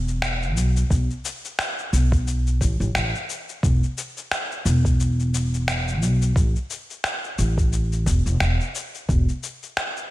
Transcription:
Already playing: upright bass E1
0.08 shaker
0.22 finger snap, shaker
0.43 shaker
0.56 upright bass B1, shaker
0.77 shaker
0.90 upright bass B1, kick, shaker
1.11 shaker
1.25 shaker
1.45 shaker
1.59 finger snap, shaker
1.79 shaker
1.93 upright bass B1, shaker
2.12 kick, shaker
2.27 shaker
2.47 shaker
2.61 upright bass A1, kick, shaker
2.80 upright bass A1, shaker
2.95 upright bass A1, finger snap, shaker
3.15 shaker
3.30 shaker
3.49 shaker
3.63 upright bass E1, kick, shaker
3.83 shaker
3.98 shaker
4.17 shaker
4.31 finger snap, shaker
4.52 shaker
4.65 upright bass E1, shaker
4.85 kick, shaker
5.00 shaker
5.20 shaker
5.34 shaker
5.54 shaker
5.68 finger snap, shaker
5.88 shaker
6.02 upright bass B1, shaker
6.22 shaker
6.36 upright bass A1, kick, shaker
6.56 shaker
6.70 shaker
6.90 shaker
7.04 finger snap, shaker
7.24 shaker
7.38 upright bass A1, shaker
7.58 kick, shaker
7.73 shaker
7.92 shaker
8.06 upright bass E1, kick, shaker
8.26 upright bass E1, shaker
8.40 upright bass E1, finger snap, shaker
8.61 shaker
8.75 shaker
8.95 shaker
9.09 upright bass E1, kick, shaker
9.29 shaker
9.43 shaker
9.63 shaker
9.77 finger snap, shaker
9.97 shaker

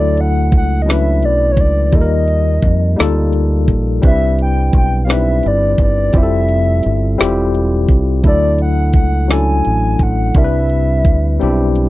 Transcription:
Already playing: fingered electric bass D2, tine electric piano F#3 A3 D4 E4 A4, soft synth lead D5
0.17 soft synth lead F#5, closed hi-hat
0.52 fingered electric bass C#2, kick, closed hi-hat
0.57 soft synth lead F#5
0.82 tine electric piano F#3 C#4, soft synth lead D#5
0.87 tine electric piano D4 E4 B4, soft synth lead E5, snare, closed hi-hat
1.22 fingered electric bass B1, soft synth lead D5, closed hi-hat
1.52 soft synth lead C#5
1.57 fingered electric bass C#2, soft synth lead D5, kick, closed hi-hat
1.86 soft synth lead D5
1.92 fingered electric bass D#2, tine electric piano G3 A#3 D#4 F4 A4, soft synth lead D#5, kick, closed hi-hat
2.01 tine electric piano A#4
2.28 closed hi-hat
2.62 fingered electric bass F2, kick, closed hi-hat
2.96 tine electric piano G3 A#3 D#4 F4 A4, snare, closed hi-hat
3.00 fingered electric bass D2
3.33 closed hi-hat
3.68 fingered electric bass A#1, kick, closed hi-hat
4.02 fingered electric bass C2, tine electric piano G3 C4 D4 E4 B4, kick, closed hi-hat
4.06 soft synth lead E5
4.39 soft synth lead G5, closed hi-hat
4.73 fingered electric bass B1, kick, closed hi-hat
4.77 soft synth lead G5
5.05 tine electric piano G3 C4 D4, soft synth lead F5
5.09 tine electric piano D#4 B4, soft synth lead E5, snare, closed hi-hat
5.16 tine electric piano E4
5.43 fingered electric bass G1, closed hi-hat
5.47 soft synth lead D5
5.78 fingered electric bass G1, kick, closed hi-hat
5.83 soft synth lead D5
6.12 fingered electric bass F1, tine electric piano G3 C4 E4 F4 G4, kick, closed hi-hat
6.17 soft synth lead E5
6.23 tine electric piano A4
6.49 closed hi-hat
6.83 fingered electric bass G1, closed hi-hat
7.18 fingered electric bass E1, tine electric piano G3 C4 E4 F4 G4, snare, closed hi-hat
7.54 closed hi-hat
7.89 fingered electric bass C2, kick, closed hi-hat
8.23 fingered electric bass D2, tine electric piano F#3 A3 D4 E4, kick, closed hi-hat
8.27 tine electric piano A4, soft synth lead D5
8.58 soft synth lead F#5, closed hi-hat
8.93 fingered electric bass C#2, soft synth lead F#5, kick, closed hi-hat
9.28 tine electric piano F#3 C#4 D4 E4 A4, soft synth lead G#5, snare, closed hi-hat
9.65 fingered electric bass A1, closed hi-hat
9.99 fingered electric bass A1, soft synth lead F#5, kick, closed hi-hat
10.34 fingered electric bass C2, tine electric piano G3 C4 D4 E4 A#4, soft synth lead E5, kick, closed hi-hat
10.44 tine electric piano B4
10.70 closed hi-hat
11.05 fingered electric bass D2, kick, closed hi-hat
11.40 fingered electric bass B1, tine electric piano G3 C4 D4 E4 G4, closed hi-hat
11.75 closed hi-hat

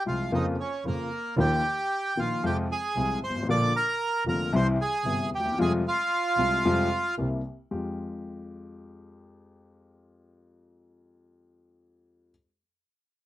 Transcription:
0.06 grand piano C2 C3 F3 G#3 F4, double bass C2, bandoneon F4 F5
0.32 double bass F2, grand piano F2 C#3 F3 A#3 F4, bandoneon D#4 D#5
0.60 bandoneon C#4 C#5
0.85 double bass F2, grand piano F2 C#3 F3 A#3 F4, bandoneon A#3 A#4
1.37 double bass D#2, grand piano D#2 D#3 F3 A#3 F4, bandoneon G4 G5
2.16 double bass A#1, grand piano A#1 A#2 D#3 F3 A#3 F4, bandoneon F4 F5
2.43 double bass F2, grand piano F2 C3 F3 G#3 F4, bandoneon G4 G5
2.71 bandoneon G#4 G#5
2.96 double bass C2, grand piano C2 C3 F3 G#3 F4
3.22 double bass G#1, bandoneon C5 C6
3.29 grand piano G1
3.36 grand piano G#1
3.43 grand piano A1
3.47 double bass A#1, grand piano A#1 A#2 D3 F3 A#3 F4, bandoneon D5 D6
3.76 bandoneon A#4 A#5
4.25 double bass F1, grand piano F1 F2 D3 F3 A#3 F4, bandoneon A#4 A#5
4.52 double bass C2, grand piano C2 C3 E3 G3 E4, bandoneon C6
4.56 bandoneon C5
4.81 bandoneon G#4 G#5
5.04 double bass G1, grand piano G1 G2 C3 E3 G3 E4
5.31 double bass D#2, bandoneon G4
5.35 bandoneon G5
5.39 grand piano D2
5.45 grand piano D#2
5.52 grand piano E2
5.58 double bass F2, grand piano F2 C3 F3 G3 G#3 F4, bandoneon G#4 G#5
5.88 bandoneon F4 F5
6.37 double bass C2, grand piano C2 C3 G3 G#3 F4
6.64 double bass F2, grand piano F2 C3 F3 G3 G#3 F4
7.18 double bass C2, grand piano C2 C3 G3 A#3 E4
7.71 grand piano F2 G#3 F4 G4, double bass F2

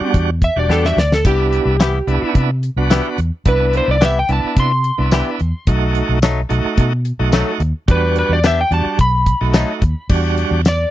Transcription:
Already playing: tonewheel organ G3 D4 F#4, electric slide guitar E4
0.01 muted fingered electric bass stroke
0.14 fingered electric bass E2, kick, closed hi-hat
0.42 electric slide guitar E5, kick, closed hi-hat
0.56 fingered electric bass E1, tonewheel organ G3 D4 F#4, electric slide guitar D5
0.69 fingered electric bass E2, clean electric guitar B3 D4 G4, electric slide guitar A4, snare
0.85 electric slide guitar E5, snare
0.97 fingered electric bass D2, electric slide guitar D5, snare
1.12 electric slide guitar A4, snare
1.24 fingered electric bass C2, tonewheel organ B3 D4 E4, electric slide guitar G4, kick, closed hi-hat, splash
1.53 closed hi-hat
1.66 fingered electric bass C2
1.80 clean electric guitar E3 B3 E4 G4, snare, closed hi-hat, tambourine
2.07 fingered electric bass C2, tonewheel organ B3 D4 E4, closed hi-hat
2.22 muted fingered electric bass stroke
2.35 fingered electric bass C3, kick, closed hi-hat
2.63 closed hi-hat
2.76 fingered electric bass C2, tonewheel organ B3 D4 F#4
2.90 clean electric guitar E3 B3 E4 G4, snare, closed hi-hat, tambourine
3.18 fingered electric bass E2, closed hi-hat
3.45 fingered electric bass C2, tonewheel organ B3 D4 E4, electric slide guitar B4, kick, closed hi-hat
3.73 electric slide guitar C5, closed hi-hat
3.88 fingered electric bass C2, electric slide guitar D5
4.01 clean electric guitar E3 B3 E4 G4, snare, closed hi-hat, tambourine
4.05 electric slide guitar E5
4.19 electric slide guitar G5
4.29 fingered electric bass C2, tonewheel organ B3 D4 E4, electric slide guitar A5, closed hi-hat
4.44 muted fingered electric bass stroke
4.57 fingered electric bass C3, electric slide guitar C6, kick, closed hi-hat
4.84 closed hi-hat
4.98 fingered electric bass C2, tonewheel organ B3 D4 E4
5.11 clean electric guitar E3 B3 E4 G4, snare, closed hi-hat, tambourine
5.40 fingered electric bass E2, closed hi-hat
5.67 fingered electric bass B1, tonewheel organ A3 D#4 F#4, kick, closed hi-hat
5.95 closed hi-hat
6.09 fingered electric bass B1
6.22 clean electric guitar F#3 A3 D#4, snare, closed hi-hat, tambourine
6.49 fingered electric bass B1, tonewheel organ A3 D#4 F#4, closed hi-hat
6.65 muted fingered electric bass stroke
6.77 fingered electric bass B2, kick, closed hi-hat
7.05 closed hi-hat
7.19 fingered electric bass B1, tonewheel organ A3 D#4 F#4
7.32 clean electric guitar F#3 A3 D#4, snare, closed hi-hat, tambourine
7.60 fingered electric bass D#2, closed hi-hat
7.88 fingered electric bass E2, tonewheel organ G3 D4 F#4, electric slide guitar B4, kick, closed hi-hat
8.16 electric slide guitar B4, closed hi-hat
8.29 fingered electric bass E2, electric slide guitar D5
8.44 clean electric guitar B3 D4 G4, electric slide guitar E5, snare, closed hi-hat, tambourine
8.61 electric slide guitar G5
8.71 fingered electric bass E2, tonewheel organ G3 D4 F#4, electric slide guitar A5, closed hi-hat
8.85 muted fingered electric bass stroke
8.99 fingered electric bass B1, electric slide guitar B5, kick, closed hi-hat
9.26 kick, closed hi-hat
9.41 fingered electric bass B1, tonewheel organ A3 D#4 F#4
9.54 clean electric guitar F#3 A3 D#4, snare, closed hi-hat, tambourine
9.82 fingered electric bass D#2, kick, closed hi-hat
10.09 fingered electric bass E2, tonewheel organ G3 D4 F#4, kick, crash
10.38 closed hi-hat
10.51 fingered electric bass E2
10.65 electric slide guitar D5, snare, closed hi-hat, tambourine

